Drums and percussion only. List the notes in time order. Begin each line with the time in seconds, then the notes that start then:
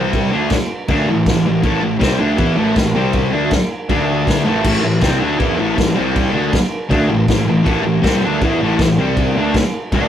0.13 kick, crash
0.50 kick, snare, crash
0.88 kick, crash
1.26 kick, snare, crash
1.63 kick, crash
2.01 kick, snare, crash
2.38 kick, crash
2.76 kick, snare, crash
3.13 kick, crash
3.51 kick, snare, crash
3.89 kick, crash
4.27 kick, snare, crash
4.64 kick, crash
5.01 kick, snare, crash
5.40 kick, crash
5.78 kick, snare, crash
6.16 kick, crash
6.53 kick, snare, crash
6.91 kick, crash
7.28 kick, snare, crash
7.66 kick, crash
8.04 kick, snare, crash
8.41 kick, crash
8.79 kick, snare, crash
9.17 kick, crash
9.54 kick, snare, crash
9.92 kick, crash